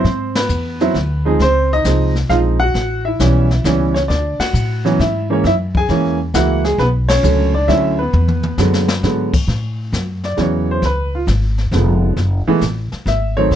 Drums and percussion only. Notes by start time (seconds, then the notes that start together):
0.04 brush sweep, kick, snare
0.35 snare, ride
0.49 hi-hat pedal
0.80 snare
0.95 kick, snare
1.40 brush sweep, kick, snare
1.85 kick, snare, hi-hat pedal
2.15 snare
2.29 kick, snare
2.75 brush sweep, kick, snare
3.20 kick, snare, hi-hat pedal
3.51 snare
3.65 kick, snare, hi-hat pedal
3.95 snare
4.10 brush sweep, kick, snare
4.40 snare, ride
4.54 hi-hat pedal
4.86 snare
4.99 kick, snare
5.44 brush sweep, kick, snare
5.75 kick
5.89 kick, snare
6.34 kick, snare, hi-hat pedal
6.64 snare
6.79 brush sweep, kick, snare
7.09 snare, ride
7.24 hi-hat pedal
7.68 kick, snare
8.13 mid tom
8.28 mid tom
8.43 mid tom
8.58 snare, hi-hat pedal
8.73 snare
8.88 snare
9.03 snare
9.34 kick, crash
9.48 brush sweep, kick, snare
9.93 kick, snare, hi-hat pedal
10.24 snare
10.37 kick, snare
10.82 brush sweep, kick, snare
11.27 kick, snare, hi-hat pedal
11.58 snare
11.72 kick, snare
12.17 brush sweep, kick, snare
12.61 kick, snare, hi-hat pedal
12.92 snare
13.06 kick, snare
13.51 brush sweep, kick, snare